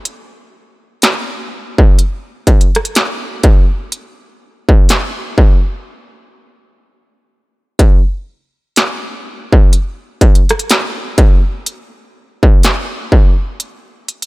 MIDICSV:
0, 0, Header, 1, 2, 480
1, 0, Start_track
1, 0, Tempo, 967742
1, 26, Time_signature, 4, 2, 24, 8
1, 7074, End_track
2, 0, Start_track
2, 0, Title_t, "Drums"
2, 26, Note_on_c, 9, 42, 68
2, 76, Note_off_c, 9, 42, 0
2, 506, Note_on_c, 9, 42, 63
2, 512, Note_on_c, 9, 38, 109
2, 556, Note_off_c, 9, 42, 0
2, 562, Note_off_c, 9, 38, 0
2, 885, Note_on_c, 9, 36, 94
2, 935, Note_off_c, 9, 36, 0
2, 985, Note_on_c, 9, 42, 64
2, 1035, Note_off_c, 9, 42, 0
2, 1225, Note_on_c, 9, 36, 86
2, 1225, Note_on_c, 9, 42, 53
2, 1275, Note_off_c, 9, 36, 0
2, 1275, Note_off_c, 9, 42, 0
2, 1294, Note_on_c, 9, 42, 53
2, 1344, Note_off_c, 9, 42, 0
2, 1364, Note_on_c, 9, 42, 55
2, 1370, Note_on_c, 9, 37, 91
2, 1413, Note_off_c, 9, 42, 0
2, 1414, Note_on_c, 9, 42, 56
2, 1420, Note_off_c, 9, 37, 0
2, 1463, Note_off_c, 9, 42, 0
2, 1465, Note_on_c, 9, 42, 69
2, 1470, Note_on_c, 9, 38, 112
2, 1514, Note_off_c, 9, 42, 0
2, 1519, Note_off_c, 9, 38, 0
2, 1704, Note_on_c, 9, 42, 65
2, 1705, Note_on_c, 9, 36, 104
2, 1753, Note_off_c, 9, 42, 0
2, 1755, Note_off_c, 9, 36, 0
2, 1945, Note_on_c, 9, 42, 71
2, 1994, Note_off_c, 9, 42, 0
2, 2325, Note_on_c, 9, 36, 95
2, 2374, Note_off_c, 9, 36, 0
2, 2425, Note_on_c, 9, 42, 62
2, 2431, Note_on_c, 9, 38, 105
2, 2475, Note_off_c, 9, 42, 0
2, 2481, Note_off_c, 9, 38, 0
2, 2667, Note_on_c, 9, 36, 88
2, 2717, Note_off_c, 9, 36, 0
2, 3865, Note_on_c, 9, 36, 125
2, 3865, Note_on_c, 9, 42, 72
2, 3914, Note_off_c, 9, 36, 0
2, 3915, Note_off_c, 9, 42, 0
2, 4346, Note_on_c, 9, 42, 64
2, 4352, Note_on_c, 9, 38, 113
2, 4396, Note_off_c, 9, 42, 0
2, 4402, Note_off_c, 9, 38, 0
2, 4725, Note_on_c, 9, 36, 93
2, 4774, Note_off_c, 9, 36, 0
2, 4825, Note_on_c, 9, 42, 68
2, 4875, Note_off_c, 9, 42, 0
2, 5065, Note_on_c, 9, 36, 94
2, 5065, Note_on_c, 9, 42, 53
2, 5115, Note_off_c, 9, 36, 0
2, 5115, Note_off_c, 9, 42, 0
2, 5135, Note_on_c, 9, 42, 56
2, 5184, Note_off_c, 9, 42, 0
2, 5205, Note_on_c, 9, 42, 53
2, 5211, Note_on_c, 9, 37, 98
2, 5254, Note_off_c, 9, 42, 0
2, 5255, Note_on_c, 9, 42, 56
2, 5260, Note_off_c, 9, 37, 0
2, 5304, Note_off_c, 9, 42, 0
2, 5305, Note_on_c, 9, 42, 73
2, 5310, Note_on_c, 9, 38, 121
2, 5355, Note_off_c, 9, 42, 0
2, 5360, Note_off_c, 9, 38, 0
2, 5545, Note_on_c, 9, 36, 117
2, 5545, Note_on_c, 9, 42, 71
2, 5594, Note_off_c, 9, 42, 0
2, 5595, Note_off_c, 9, 36, 0
2, 5785, Note_on_c, 9, 42, 77
2, 5835, Note_off_c, 9, 42, 0
2, 6165, Note_on_c, 9, 36, 100
2, 6214, Note_off_c, 9, 36, 0
2, 6266, Note_on_c, 9, 42, 65
2, 6272, Note_on_c, 9, 38, 109
2, 6316, Note_off_c, 9, 42, 0
2, 6321, Note_off_c, 9, 38, 0
2, 6508, Note_on_c, 9, 36, 88
2, 6557, Note_off_c, 9, 36, 0
2, 6745, Note_on_c, 9, 42, 66
2, 6795, Note_off_c, 9, 42, 0
2, 6986, Note_on_c, 9, 42, 53
2, 7036, Note_off_c, 9, 42, 0
2, 7055, Note_on_c, 9, 42, 55
2, 7074, Note_off_c, 9, 42, 0
2, 7074, End_track
0, 0, End_of_file